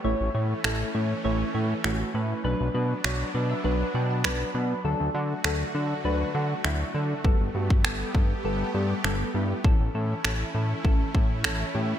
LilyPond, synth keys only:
\new Staff \with { instrumentName = "Synth keys" } { \time 4/4 \key a \mixolydian \tempo 4 = 100 << { r1 | r4. d''16 e''16 fis''8 g''16 a''16 b''8 b''8 | r1 | r1 |
r1 | } \\ { <a e' cis''>8 <a e' cis''>8 <a e' a'>8 <a e' cis''>8 <a e' cis''>8 <a e' cis''>8 <a e' fis'>8 <a e' b'>8 | <fis d' b'>8 <fis d' b'>8 <fis d' cis''>8 <fis d' b'>8 <fis d' b'>8 <fis d' b'>8 <fis d' b'>8 <fis d' b'>8 | <fis d' a'>8 <fis d' fis'>8 <fis d' a'>8 <fis d' a'>8 <fis d' b'>8 <fis d' fis'>8 <fis d' e'>8 <fis d' a'>8 | <g b a'>8 <g b fis'>8 <g b a'>8 <g b a'>8 <g b a'>8 <g b a'>8 <g b a'>8 <g b e'>8 |
<e cis' a'>8 <e cis' a'>8 <e cis' a'>8 <e cis' a'>8 <e cis' a'>8 <e cis' a'>8 <e cis' a'>8 <e cis' g'>8 | } >> }